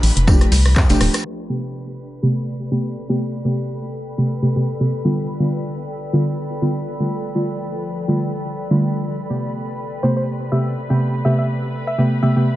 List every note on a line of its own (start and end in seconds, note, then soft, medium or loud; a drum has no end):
0.00 0.11 A1 medium
0.00 0.25 F3 medium
0.00 0.25 A3 medium
0.00 0.25 D4 medium
0.00 0.25 G4 medium
0.00 1.24 B4 medium
0.00 1.24 B5 medium
0.00 open hi-hat loud
0.00 tambourine medium
0.17 0.45 F1 medium
0.17 closed hi-hat medium
0.28 0.49 F3 medium
0.28 0.49 A3 medium
0.28 0.49 D4 medium
0.28 0.49 G4 medium
0.28 kick loud
0.28 cross-stick medium
0.28 tambourine medium
0.41 cross-stick medium
0.41 closed hi-hat soft
0.52 0.76 C2 medium
0.52 snare loud
0.52 open hi-hat loud
0.52 tambourine medium
0.66 cross-stick medium
0.66 open hi-hat medium
0.76 0.84 F2 medium
0.76 kick loud
0.76 cross-stick medium
0.76 clap loud
0.76 tambourine medium
0.89 0.96 F1 loud
0.89 1.24 F3 medium
0.89 1.24 A3 medium
0.89 1.24 D4 medium
0.89 1.24 G4 medium
0.89 snare loud
0.89 closed hi-hat medium
0.89 tambourine medium
1.01 1.09 D1 loud
1.01 cross-stick medium
1.01 snare loud
1.01 open hi-hat loud
1.01 tambourine medium
1.14 cross-stick medium
1.14 snare loud
1.14 closed hi-hat medium
1.14 tambourine medium
1.25 12.56 A4 medium
1.25 9.04 B4 medium
1.25 9.04 B5 medium
1.25 crash medium
1.39 12.56 D5 medium
1.49 2.20 C3 medium
1.49 2.20 A3 medium
1.49 2.20 B3 medium
1.49 2.20 G4 medium
1.77 12.56 B5 medium
2.05 12.56 G5 medium
2.22 2.69 C3 medium
2.22 2.69 A3 medium
2.22 2.69 B3 medium
2.22 2.69 G4 medium
2.71 2.93 C3 medium
2.71 2.93 A3 medium
2.71 2.93 B3 medium
2.71 2.93 G4 medium
3.09 3.42 C3 medium
3.09 3.42 A3 medium
3.09 3.42 B3 medium
3.09 3.42 G4 medium
3.44 4.15 C3 medium
3.44 4.15 A3 medium
3.44 4.15 B3 medium
3.44 4.15 G4 medium
4.18 4.40 C3 medium
4.18 4.40 A3 medium
4.18 4.40 B3 medium
4.18 4.40 G4 medium
4.42 4.54 C3 medium
4.42 4.54 A3 medium
4.42 4.54 B3 medium
4.42 4.54 G4 medium
4.56 4.68 C3 medium
4.56 4.68 A3 medium
4.56 4.68 B3 medium
4.56 4.68 G4 medium
4.80 4.92 C3 medium
4.80 4.92 A3 medium
4.80 4.92 B3 medium
4.80 4.92 G4 medium
5.05 5.37 D3 medium
5.05 5.37 G3 medium
5.05 5.37 B3 medium
5.05 5.37 F4 medium
5.40 6.10 D3 medium
5.40 6.10 G3 medium
5.40 6.10 B3 medium
5.40 6.10 F4 medium
6.13 6.59 D3 medium
6.13 6.59 G3 medium
6.13 6.59 B3 medium
6.13 6.59 F4 medium
6.62 6.84 D3 medium
6.62 6.84 G3 medium
6.62 6.84 B3 medium
6.62 6.84 F4 medium
7.00 7.32 D3 medium
7.00 7.32 G3 medium
7.00 7.32 A3 medium
7.00 7.32 F4 medium
7.10 9.05 F3 medium
7.35 8.05 D3 medium
7.35 8.05 G3 medium
7.35 8.05 A3 medium
7.35 8.05 F4 medium
8.08 8.30 D3 medium
8.08 8.30 G3 medium
8.08 8.30 A3 medium
8.08 8.30 F4 medium
8.70 9.04 D3 medium
8.70 9.04 G3 medium
8.70 9.04 A3 medium
8.70 9.04 F4 medium
9.06 12.56 B4 medium
9.06 12.56 B5 medium
9.30 10.00 C3 medium
9.30 10.01 A3 medium
9.30 10.01 B3 medium
9.30 10.01 G4 medium
10.03 10.49 C3 medium
10.03 10.49 A3 medium
10.03 10.49 B3 medium
10.03 10.49 G4 medium
10.03 10.12 C5 medium
10.17 10.24 C5 medium
10.52 10.74 C3 medium
10.52 10.74 A3 medium
10.52 10.74 B3 medium
10.52 10.74 G4 medium
10.52 10.69 E5 medium
10.90 11.22 C3 medium
10.90 11.22 A3 medium
10.90 11.22 B3 medium
10.90 11.22 G4 medium
11.25 11.96 C3 medium
11.25 11.96 A3 medium
11.25 11.96 B3 medium
11.25 11.96 G4 medium
11.25 11.34 E5 medium
11.39 11.46 E5 medium
11.87 12.02 E5 medium
11.98 12.20 C3 medium
11.98 12.20 A3 medium
11.98 12.20 B3 medium
11.98 12.20 G4 medium
12.22 12.34 C3 medium
12.22 12.34 A3 medium
12.22 12.34 B3 medium
12.22 12.34 G4 medium
12.22 12.56 E5 medium
12.36 12.48 C3 medium
12.36 12.48 A3 medium
12.36 12.48 B3 medium
12.36 12.48 G4 medium